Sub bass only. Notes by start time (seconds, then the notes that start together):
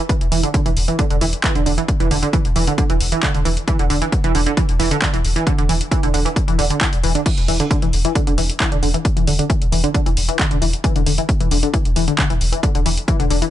0.21 E1
0.32 E1
0.66 E1
0.77 E1
1.11 E1
1.21 E1
1.55 E1
1.66 E1
2.00 E1
2.11 E1
2.45 E1
2.56 E1
2.90 E1
3.01 E1
3.34 E1
3.45 E1
3.79 E1
3.90 E1
4.24 E1
4.35 E1
4.69 E1
4.80 E1
5.13 E1
5.24 E1
5.58 E1
5.69 E1
6.03 E1
6.14 E1
6.48 E1
6.59 E1
6.93 E1
7.04 E1
7.38 E1
7.48 E1
7.82 E1
7.93 E1
8.27 E1
8.38 E1
8.72 E1
8.83 E1
9.17 E1
9.27 E1
9.61 E1
9.72 E1
10.06 E1
10.17 E1
10.51 E1
10.62 E1
10.96 E1
11.06 E1
11.40 E1
11.51 E1
11.85 E1
11.96 E1
12.30 E1
12.41 E1
12.75 E1
12.86 E1
13.19 E1
13.30 E1